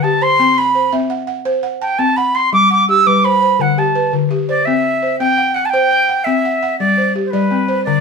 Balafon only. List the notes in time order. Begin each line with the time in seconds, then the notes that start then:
Already playing: D3 B4
0.04 G4
0.21 C5
0.39 C4
0.58 B5
0.75 C5
0.93 C4 E5
1.10 F#5
1.27 F#5
1.45 C5
1.63 F#5
1.82 A5
1.99 C4
2.17 F#5
2.35 B5
2.53 G3
2.70 F#5
2.89 G4
3.06 G3 B4
3.24 C5
3.42 C5
3.59 D3
3.78 G4
3.95 B4
4.13 D3
4.31 G4
4.49 C5
4.67 C4
5.03 C5
5.20 C4 G5
5.38 F#5
5.56 G5
5.73 C5
5.91 G5
6.09 F#5
6.27 C4
6.45 F#5
6.63 F#5
6.80 G3
6.97 C5
7.16 G4
7.33 G3 D5
7.51 C4
7.68 C5
7.87 D3